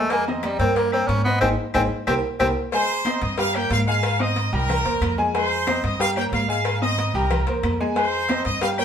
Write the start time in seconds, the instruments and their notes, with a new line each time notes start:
Already playing: upright bass F2, tenor saxophone A3
0.10 grand piano G#3 G#4 G#5, tenor saxophone A#3, cowbell, high conga, low agogo
0.27 tenor saxophone D#3, grand piano C4 C5 D#5, high conga, low agogo
0.43 tenor saxophone G3, cowbell, high conga, low agogo, claves
0.59 upright bass G2, grand piano A#3 A#4 C#5, tenor saxophone C4, cowbell, high conga
0.76 tenor saxophone A#3, cowbell, high conga, low agogo
0.92 grand piano A#3 A#4 C#5, tenor saxophone C4, high conga, low agogo, claves
1.07 upright bass G#2, tenor saxophone C#4, cowbell, high conga, low agogo
1.24 tenor saxophone B3, grand piano C4 C5 D#5
1.41 upright bass G#1, tenor saxophone C4, grand piano D#4 G#4 C5, cowbell, high conga, high timbale, claves
1.74 upright bass G#1, tenor saxophone C4, grand piano D#4 G#4 C5, cowbell, high conga, high timbale, claves
2.07 upright bass C2, tenor saxophone C4, grand piano G4 A#4 C5, cowbell, high conga, high timbale, claves
2.40 upright bass C2, tenor saxophone C4, grand piano G4 A#4 C5, cowbell, high conga, high timbale, claves
2.72 grand piano G#3 G#4 G#5, trumpet section C5 C6, cowbell, high conga, low agogo
2.89 high conga, low agogo
3.05 grand piano C4 C5 D#5, cowbell, high conga, low agogo, claves
3.21 upright bass G2, trumpet section D#5 D#6, cowbell, high conga
3.38 grand piano G3 G4 G5, trumpet section F5, cowbell, high conga, low agogo
3.54 grand piano A#3 A#4 C#5, trumpet section G4 G5, high conga, low agogo, claves
3.70 upright bass G#2, trumpet section F5, cowbell, high conga, low timbale, low agogo
3.88 grand piano G#3 G#4 G#5, trumpet section F5
4.03 cowbell, low agogo, claves
4.20 grand piano C4 C5 D#5, trumpet section D#5 D#6
4.36 cowbell, high conga, low agogo
4.53 upright bass C2, grand piano G3 G4 G5, trumpet section A#4 A#5, high conga, low agogo
4.69 cowbell, high conga, low conga, low agogo, claves
4.85 upright bass E2, grand piano A#3 A#4 C5, cowbell, high conga
5.01 upright bass F2, cowbell, high conga, low agogo, claves
5.18 grand piano G#3 G#4 G#5, high conga
5.34 grand piano G#3 G#4 G#5, trumpet section C5 C6, cowbell, high conga, low agogo
5.51 high conga, low agogo
5.67 grand piano C4 C5 D#5, cowbell, high conga, low agogo, claves
5.84 upright bass G2, trumpet section D#5 D#6, cowbell, high conga
5.99 grand piano G3 G4 G5, trumpet section F5, cowbell, high conga, low agogo
6.16 grand piano A#3 A#4 C#5, trumpet section G4 G5, high conga, low agogo, claves
6.32 upright bass G#2, trumpet section F5, cowbell, high conga, low timbale, low agogo
6.48 grand piano G#3 G#4 G#5, trumpet section F5
6.65 cowbell, high conga, low agogo, claves
6.82 grand piano C4 C5 D#5, trumpet section D#5 D#6, high conga
6.98 cowbell, high conga, low agogo
7.14 upright bass C2, grand piano G3 G4 G5, trumpet section A#4 A#5, high conga, low agogo
7.31 cowbell, high conga, low conga, low agogo, claves
7.47 upright bass E2, grand piano A#3 A#4 C5, cowbell, high conga
7.63 upright bass F2, cowbell, high conga, low agogo, claves
7.80 grand piano G#3 G#4 G#5, high conga
7.96 grand piano G#3 G#4 G#5, trumpet section C5 C6, cowbell, high conga, low agogo
8.13 high conga, low agogo
8.29 grand piano C4 C5 D#5, cowbell, high conga, low agogo, claves
8.45 upright bass G2, trumpet section D#5 D#6, cowbell, high conga
8.61 grand piano G3 G4 G5, trumpet section F5, cowbell, high conga, low agogo
8.78 grand piano A#3 A#4 C#5, trumpet section G4 G5, high conga, low agogo, claves